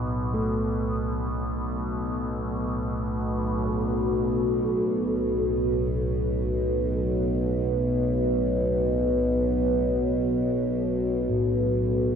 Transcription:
0.00 3.67 B1 medium
0.00 3.19 A2 medium
0.00 3.68 B2 medium
0.34 6.05 A3 soft
0.34 6.05 A4 medium
3.69 12.15 B1 medium
3.69 12.15 B2 medium
11.30 12.15 A2 medium

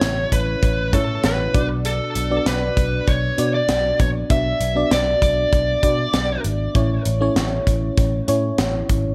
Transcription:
0.00 0.24 A1 medium
0.00 0.28 A2 medium
0.00 1.56 C#3 medium
0.00 0.92 A3 medium
0.00 0.93 C#4 medium
0.00 0.93 E4 medium
0.00 0.28 C#5 medium
0.00 0.93 C#5 medium
0.00 1.56 E5 medium
0.00 snare loud
0.00 closed hi-hat medium
0.32 0.54 A1 medium
0.32 0.93 B4 medium
0.32 kick medium
0.32 closed hi-hat medium
0.63 0.95 A1 medium
0.63 kick medium
0.63 closed hi-hat medium
0.92 1.15 A2 medium
0.92 1.48 A3 medium
0.92 1.48 C#4 medium
0.92 1.48 E4 medium
0.92 1.22 A4 medium
0.92 1.49 C#5 medium
0.92 kick medium
0.92 closed hi-hat medium
1.24 1.46 A1 medium
1.24 1.67 B4 medium
1.24 snare loud
1.24 closed hi-hat medium
1.54 1.99 B1 medium
1.54 2.42 B2 medium
1.54 2.15 B3 medium
1.54 2.16 D4 medium
1.54 2.16 F#4 medium
1.54 2.16 D5 medium
1.54 kick loud
1.54 closed hi-hat medium
1.85 2.47 A4 medium
1.85 closed hi-hat medium
2.15 2.38 B1 medium
2.15 closed hi-hat medium
2.30 2.95 B3 medium
2.30 2.95 D4 medium
2.30 2.95 F#4 medium
2.30 2.96 D5 medium
2.46 2.68 B1 medium
2.46 3.10 B4 medium
2.46 snare loud
2.46 closed hi-hat medium
2.77 2.99 B1 medium
2.77 kick medium
2.77 closed hi-hat medium
3.08 3.30 B1 medium
3.08 3.51 C#5 medium
3.08 kick medium
3.08 closed hi-hat medium
3.38 3.60 B2 medium
3.38 3.93 B3 medium
3.38 3.93 D4 medium
3.38 3.94 F#4 medium
3.38 3.94 D5 medium
3.38 closed hi-hat medium
3.54 4.00 D5 medium
3.69 3.91 B1 medium
3.69 snare loud
3.69 closed hi-hat medium
4.00 4.22 A#1 medium
4.00 4.28 B3 medium
4.00 4.08 C#5 medium
4.00 kick medium
4.00 closed hi-hat medium
4.30 4.52 B1 medium
4.30 4.57 B3 medium
4.30 4.58 D4 medium
4.30 4.58 F#4 medium
4.30 4.58 E5 medium
4.30 4.92 E5 loud
4.30 kick medium
4.30 closed hi-hat medium
4.61 4.83 B1 medium
4.61 closed hi-hat medium
4.75 5.40 B3 medium
4.75 5.40 D4 medium
4.75 5.40 F#4 medium
4.75 5.41 D5 medium
4.91 5.13 B1 medium
4.91 5.21 D5 medium
4.91 snare loud
4.91 closed hi-hat medium
5.22 5.44 B1 medium
5.22 6.41 D5 medium
5.22 kick medium
5.22 closed hi-hat medium
5.53 5.75 B1 medium
5.53 kick medium
5.53 closed hi-hat medium
5.83 6.05 B2 medium
5.83 6.38 B3 medium
5.83 6.38 D4 medium
5.83 6.38 F#4 medium
5.83 6.39 D5 medium
5.83 kick medium
5.83 closed hi-hat medium
6.14 6.36 B1 medium
6.14 snare loud
6.14 closed hi-hat medium
6.44 6.67 G#1 medium
6.44 closed hi-hat medium
6.75 6.97 A1 medium
6.75 7.63 A2 medium
6.75 7.02 A3 medium
6.75 7.03 C#4 medium
6.75 7.03 E4 medium
6.75 7.03 C#5 medium
6.75 kick loud
6.75 closed hi-hat medium
7.05 7.28 A1 medium
7.05 closed hi-hat medium
7.21 7.85 A3 medium
7.21 7.85 C#4 medium
7.21 7.85 E4 medium
7.21 7.86 C#5 medium
7.36 7.58 A1 medium
7.36 snare loud
7.36 closed hi-hat medium
7.67 7.89 A1 medium
7.67 kick medium
7.67 closed hi-hat medium
7.97 8.20 A1 medium
7.97 kick medium
7.97 closed hi-hat medium
8.28 8.50 A2 medium
8.28 8.83 A3 medium
8.28 8.83 C#4 medium
8.28 8.83 E4 medium
8.28 8.84 C#5 medium
8.28 closed hi-hat medium
8.58 8.81 A1 medium
8.58 snare loud
8.58 closed hi-hat medium
8.89 9.11 G#1 medium
8.89 kick medium
8.89 closed hi-hat medium

